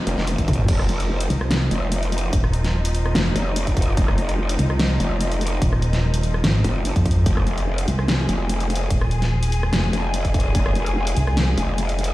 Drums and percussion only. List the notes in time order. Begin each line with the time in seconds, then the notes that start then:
0.07 closed hi-hat
0.18 snare
0.27 closed hi-hat, high tom
0.38 kick, closed hi-hat, high tom
0.48 kick, closed hi-hat, mid tom
0.53 closed hi-hat
0.59 mid tom
0.68 kick, closed hi-hat, crash
0.79 cross-stick
0.89 closed hi-hat
1.00 closed hi-hat
1.21 closed hi-hat
1.30 closed hi-hat
1.41 cross-stick
1.51 snare, closed hi-hat
1.71 closed hi-hat
1.92 closed hi-hat
2.03 closed hi-hat
2.12 closed hi-hat
2.18 closed hi-hat
2.33 kick, closed hi-hat
2.44 cross-stick
2.53 closed hi-hat
2.64 snare, closed hi-hat
2.85 closed hi-hat
2.95 closed hi-hat
3.06 cross-stick
3.15 snare, closed hi-hat
3.36 closed hi-hat
3.56 closed hi-hat
3.67 kick, closed hi-hat
3.77 kick, closed hi-hat
3.82 closed hi-hat
3.97 kick, closed hi-hat
4.08 cross-stick
4.18 closed hi-hat
4.29 closed hi-hat
4.49 closed hi-hat
4.59 closed hi-hat
4.70 cross-stick
4.79 snare, closed hi-hat
5.00 closed hi-hat
5.21 closed hi-hat
5.32 closed hi-hat
5.41 closed hi-hat
5.47 closed hi-hat
5.62 kick, closed hi-hat
5.73 cross-stick
5.82 closed hi-hat
5.93 snare, closed hi-hat
6.14 closed hi-hat
6.23 closed hi-hat
6.34 cross-stick
6.44 snare, closed hi-hat
6.64 closed hi-hat
6.85 closed hi-hat
6.96 kick, closed hi-hat
7.06 kick, closed hi-hat
7.11 closed hi-hat
7.26 kick, closed hi-hat
7.37 cross-stick
7.47 closed hi-hat
7.58 closed hi-hat
7.78 closed hi-hat
7.88 closed hi-hat
7.99 cross-stick
8.08 snare, closed hi-hat
8.29 closed hi-hat
8.49 closed hi-hat
8.60 closed hi-hat
8.70 closed hi-hat
8.75 closed hi-hat
8.90 kick, closed hi-hat
9.01 cross-stick
9.11 closed hi-hat
9.22 snare, closed hi-hat
9.43 closed hi-hat
9.52 closed hi-hat
9.63 cross-stick
9.73 snare, closed hi-hat
9.93 closed hi-hat
10.14 closed hi-hat
10.25 kick, closed hi-hat
10.34 kick, closed hi-hat
10.40 closed hi-hat
10.55 kick, closed hi-hat
10.66 cross-stick
10.75 closed hi-hat
10.86 closed hi-hat
11.07 closed hi-hat
11.17 closed hi-hat
11.27 cross-stick
11.37 snare, closed hi-hat
11.58 closed hi-hat
11.78 closed hi-hat
11.89 closed hi-hat
11.99 closed hi-hat
12.04 closed hi-hat